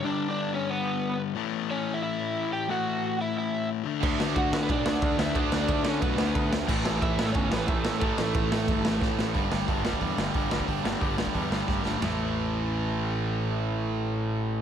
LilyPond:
<<
  \new Staff \with { instrumentName = "Overdriven electric guitar" } { \time 4/4 \key g \lydian \tempo 4 = 180 <d' d''>8. <d' d''>8. <cis' cis''>8 <b b'>4. r8 | r4 <cis' cis''>8. <e' e''>16 <e' e''>4. <g' g''>8 | <fis' fis''>4. <e' e''>8 <e' e''>4 r4 | r4 <fis' fis''>8. <b b'>16 <d' d''>4. <e' e''>8 |
<d' d''>8. <d' d''>8. <cis' cis''>8 <b b'>4. r8 | r4 <e' e''>8. <a a'>16 <cis' cis''>8 <b b'>8 <a a'>4 | <a a'>2. r4 | r1 |
r1 | r1 | r1 | }
  \new Staff \with { instrumentName = "Distorted electric guitar" } { \clef bass \time 4/4 \key g \lydian <g, d g>1 | <a, e a>1 | <a, e a>2.~ <a, e a>8 <d a d'>8~ | <d a d'>2.~ <d a d'>8 <d a d'>8~ |
<d a d'>2.~ <d a d'>8 r8 | <a, e a>1 | <a, e a>1 | <g, d g>8 <g, d g>8 <g, d g>8 <g, d g>8 <g, d g>8 <g, d g>8 <g, d g>8 <g, d g>8 |
<g, d g>8 <g, d g>8 <g, d g>8 <g, d g>8 <g, d g>8 <g, d g>8 <g, d g>8 <g, d g>8 | <a, e a>1~ | <a, e a>1 | }
  \new Staff \with { instrumentName = "Distorted electric guitar" } { \clef bass \time 4/4 \key g \lydian r1 | r1 | r1 | <d a d'>1 |
<d a d'>1 | <a, e a>1 | <a, e a>1 | <g, d g>8 <g, d g>8 <g, d g>8 <g, d g>8 <g, d g>8 <g, d g>8 <g, d g>8 <g, d g>8 |
<g, d g>8 <g, d g>8 <g, d g>8 <g, d g>8 <g, d g>8 <g, d g>8 <g, d g>8 <g, d g>8 | <a, e a>1~ | <a, e a>1 | }
  \new Staff \with { instrumentName = "Picked electric bass" } { \clef bass \time 4/4 \key g \lydian r1 | r1 | r1 | d,8 d,8 d,8 d8 b,,8 d,8 d,8 d,8 |
d,8 d,8 d,8 d8 b,,8 d,8 d,8 d,8 | a,,8 a,,8 a,,8 a,8 g,,8 a,,8 a,,8 a,,8 | a,,8 a,,8 a,,8 a,8 g,,8 a,,8 a,,8 a,,8 | g,,8 g,,8 g,,4 e,8 g,,8 g,,8 g,,8 |
g,,8 g,,8 g,,4 e,8 g,,8 g,,8 g,,8 | a,,1~ | a,,1 | }
  \new DrumStaff \with { instrumentName = "Drums" } \drummode { \time 4/4 r4 r4 r4 r4 | r4 r4 r4 r4 | r4 r4 r4 r4 | <cymc bd>8 sn8 <bd cymr>8 sn8 <bd cymr>8 sn8 <bd cymr>8 sn8 |
<bd cymr>8 sn8 <bd cymr>8 sn8 <bd cymr>8 sn8 <bd cymr>8 sn8 | <cymc bd>8 sn8 <bd cymr>8 sn8 <bd cymr>8 sn8 <bd cymr>8 sn8 | <bd cymr>8 sn8 <bd cymr>8 sn8 <bd cymr>8 sn8 <bd sn>8 sn8 | <hho bd>8 sn8 <hho bd>8 sn16 bd16 <hho bd>8 sn8 <hho bd>8 sn16 bd16 |
<hho bd>8 sn8 <hho bd>8 sn16 bd16 <hho bd>8 sn8 <bd sn>8 sn8 | <rb sn tomfh>4 r4 r4 r4 | r4 r4 r4 r4 | }
>>